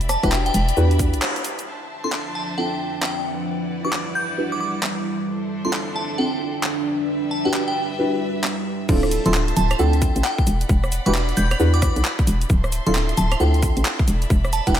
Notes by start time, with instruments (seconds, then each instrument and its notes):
Already playing: fm bass E1, violin section D5 E5 B5
0.01 closed hi-hat, cabasa
0.09 synth bell A5, cross-stick, open hi-hat, cabasa
0.23 fm bass E1, synth stab D4 E4 F#4 G4 B4, synth bell G5, kick, cross-stick, closed hi-hat, cabasa
0.32 clap, cabasa
0.46 synth bell G5, closed hi-hat, cabasa
0.54 fm bass E1, open hi-hat, cabasa
0.69 closed hi-hat, cabasa
0.77 fm bass E2, synth stab D4 E4 F#4 G4 B4, cabasa
0.91 closed hi-hat, cabasa
0.99 kick, open hi-hat, cabasa
1.14 fm bass B1, closed hi-hat, cabasa
1.22 cross-stick, clap, cabasa
1.36 closed hi-hat, cabasa
1.44 open hi-hat, cabasa
1.59 closed hi-hat, cabasa
1.67 ambient pad D4, violin section D4 C5 E5 A5
1.87 ambient pad F3
2.04 synth stab C4 D4 E4 F4 A4, synth bell C6
2.12 clap
2.35 synth bell A5, ambient pad E6
2.57 synth stab C4 D4 E4 F4 A4, synth bell G5
3.02 synth bell G5, clap
3.25 ambient pad E4, violin section E4 B4 D5 F#5
3.55 ambient pad G3
3.76 ambient pad D5
3.84 synth stab D4 E4 F#4 G4 B4, synth bell D6
3.93 clap
4.15 synth bell G6
4.38 synth stab D4 E4 F#4 G4 B4
4.52 synth bell D6
4.60 synth bell D6
4.83 clap
5.28 violin section D4 A4 C5 E5, ambient pad D4
5.41 ambient pad C5
5.65 synth stab C4 D4 E4 F4 A4, synth bell C6
5.73 clap
5.96 synth bell A5
6.00 ambient pad E6
6.18 synth stab C4 D4 E4 F4 A4, synth bell G5
6.63 clap
6.86 violin section G3 B4 D5 E5
7.25 ambient pad G3
7.31 synth bell A5
7.45 synth stab D4 E4 F#4 G4 B4, synth bell G5
7.54 clap
7.68 synth bell G5
7.99 synth stab D4 E4 F#4 G4 B4
8.44 clap
8.89 fm bass D1, synth stab C4 D4 E4 F4 A4, violin section C5 E5 A5, kick, crash, cabasa
9.03 cross-stick, cabasa
9.11 open hi-hat, cabasa
9.26 fm bass D1, synth stab C4 D4 E4 F4 A4, synth bell C6, closed hi-hat, cabasa
9.34 clap, cabasa
9.48 closed hi-hat, cabasa
9.56 fm bass D1, synth bell A5, open hi-hat, cabasa
9.71 cross-stick, closed hi-hat, cabasa, claves
9.79 fm bass D2, synth stab C4 D4 E4 F4 A4, synth bell G5, cabasa
9.93 closed hi-hat, cabasa
10.02 kick, open hi-hat, cabasa
10.16 fm bass A1, closed hi-hat, cabasa
10.24 synth bell G5, clap, cabasa
10.38 kick, cabasa
10.47 fm bass E1, violin section D5 F#5 B5, open hi-hat, cabasa
10.61 closed hi-hat, cabasa
10.69 fm bass E1, kick, cabasa
10.84 cross-stick, cabasa
10.92 open hi-hat, cabasa
11.06 fm bass E1, synth stab D4 E4 F#4 G4 B4, synth bell D6, closed hi-hat, cabasa
11.15 clap, cabasa
11.29 closed hi-hat, cabasa
11.37 fm bass E1, synth bell G6, open hi-hat, cabasa
11.51 cross-stick, closed hi-hat, cabasa, claves
11.60 fm bass E2, synth stab D4 E4 F#4 G4 B4, cabasa
11.74 synth bell D6, closed hi-hat, cabasa
11.82 synth bell D6, kick, cross-stick, open hi-hat, cabasa
11.96 fm bass B1, closed hi-hat, cabasa
12.05 clap, cabasa
12.19 kick, cabasa
12.27 fm bass E1, open hi-hat, cabasa
12.42 closed hi-hat, cabasa
12.50 fm bass D1, violin section E5 A5 C6, kick, cabasa
12.64 cross-stick, cabasa
12.72 open hi-hat, cabasa
12.87 fm bass D1, synth stab C4 D4 E4 F4 A4, synth bell C6, closed hi-hat, cabasa
12.95 clap, cabasa
13.09 closed hi-hat, cabasa
13.17 fm bass D1, synth bell A5, open hi-hat, cabasa
13.32 cross-stick, closed hi-hat, cabasa, claves
13.40 fm bass D2, synth stab C4 D4 E4 F4 A4, synth bell G5, cabasa
13.54 closed hi-hat, cabasa
13.62 kick, open hi-hat, cabasa
13.77 fm bass A1, closed hi-hat, cabasa
13.85 clap, cabasa
13.99 kick, cabasa
14.08 fm bass E1, violin section D5 E5 B5, open hi-hat, cabasa
14.22 closed hi-hat, cabasa
14.30 fm bass E1, kick, cabasa
14.45 cross-stick, cabasa
14.53 synth bell A5, open hi-hat, cabasa
14.67 fm bass E1, synth stab D4 E4 F#4 G4 B4, synth bell G5, kick, closed hi-hat, cabasa
14.75 clap, cabasa